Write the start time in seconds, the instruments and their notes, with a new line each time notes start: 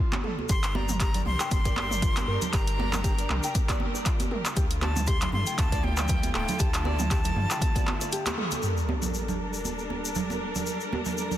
0.00 nylon-string guitar F4
0.12 clap, high conga
0.24 nylon-string guitar A4, mid tom
0.39 high conga
0.49 analog synth bass G1, string section G3 D4 G4 A#4, nylon-string guitar G4, flute C6, kick, closed hi-hat, shaker
0.63 clap, closed hi-hat, shaker
0.75 nylon-string guitar D5, flute A#5, high conga
0.89 mid tom, low conga, shaker
1.00 nylon-string guitar G4, flute A#5, kick, clap, closed hi-hat, shaker
1.14 nylon-string guitar D5, closed hi-hat, low conga, shaker
1.26 analog synth bass C2, flute C6, mid tom
1.40 nylon-string guitar G5, clap, closed hi-hat, shaker
1.51 analog synth bass G1, flute C6, kick, closed hi-hat, high conga, shaker
1.65 nylon-string guitar D5, kick, closed hi-hat, shaker
1.76 clap, high conga
1.91 nylon-string guitar D5, mid tom, shaker
2.02 nylon-string guitar F4, kick, closed hi-hat, low conga, shaker
2.17 clap, closed hi-hat, high conga, shaker
2.28 analog synth bass G2, nylon-string guitar A#4
2.42 closed hi-hat, low conga, shaker
2.53 analog synth bass G1, nylon-string guitar G4, flute A#5, kick, clap, closed hi-hat, shaker
2.67 closed hi-hat, shaker
2.79 nylon-string guitar D5, high conga
2.92 clap, mid tom, low conga, shaker
3.04 nylon-string guitar G4, kick, closed hi-hat, shaker
3.18 nylon-string guitar D5, closed hi-hat, shaker
3.30 analog synth bass C2, clap, mid tom
3.43 nylon-string guitar G5, closed hi-hat, shaker
3.55 kick, closed hi-hat, high conga, shaker
3.69 nylon-string guitar D5, kick, clap, closed hi-hat, high conga, shaker
3.80 high conga
3.95 nylon-string guitar D5, shaker
4.06 nylon-string guitar F4, kick, clap, closed hi-hat, shaker
4.20 closed hi-hat, high conga, shaker
4.31 nylon-string guitar A#4, mid tom
4.45 clap, closed hi-hat, shaker
4.56 analog synth bass D2, string section D3 A3 E4 F4, nylon-string guitar G4, kick, closed hi-hat, shaker
4.70 closed hi-hat, shaker
4.82 nylon-string guitar D5, flute A5, clap, high conga
4.96 mid tom, low conga, shaker
5.06 nylon-string guitar G4, flute C6, kick, closed hi-hat, shaker
5.21 nylon-string guitar D5, clap, closed hi-hat, low conga, shaker
5.33 analog synth bass G2, flute C6, mid tom
5.46 nylon-string guitar G5, closed hi-hat, shaker
5.58 analog synth bass D2, flute A5, kick, clap, closed hi-hat, high conga, shaker
5.72 nylon-string guitar D5, kick, closed hi-hat, shaker
5.84 flute G5, high conga
5.97 nylon-string guitar D5, clap, mid tom, shaker
6.08 nylon-string guitar F4, kick, closed hi-hat, low conga, shaker
6.23 closed hi-hat, high conga, shaker
6.34 analog synth bass D1, nylon-string guitar A4, flute G5, clap
6.48 closed hi-hat, low conga, shaker
6.59 analog synth bass D2, nylon-string guitar G4, flute A5, kick, closed hi-hat, shaker
6.74 clap, closed hi-hat, shaker
6.85 nylon-string guitar D5, high conga
6.99 mid tom, low conga, shaker
7.11 nylon-string guitar G4, kick, clap, closed hi-hat, shaker
7.24 nylon-string guitar D5, closed hi-hat, low conga, shaker
7.36 analog synth bass G2, mid tom
7.51 nylon-string guitar G5, clap, closed hi-hat, shaker
7.61 kick, closed hi-hat, high conga, shaker
7.75 nylon-string guitar D5, kick, closed hi-hat, high conga, shaker
7.87 clap, high conga
8.01 nylon-string guitar D5, closed hi-hat, shaker
8.12 nylon-string guitar G4, closed hi-hat, shaker
8.26 nylon-string guitar G4, clap, closed hi-hat, high conga, shaker
8.38 nylon-string guitar A4, mid tom
8.51 closed hi-hat, high conga, shaker
8.62 string section G3 D4 A4 A#4, sub drop, shaker
8.77 shaker
8.89 high conga
9.02 low conga, shaker
9.14 shaker
9.28 low conga, shaker
9.53 shaker
9.65 high conga, shaker
9.79 shaker
9.90 high conga
10.05 shaker
10.15 low conga, shaker
10.30 high conga, shaker
10.55 low conga, shaker
10.66 shaker
10.80 shaker
10.93 high conga
11.05 low conga, shaker
11.18 shaker
11.31 low conga, shaker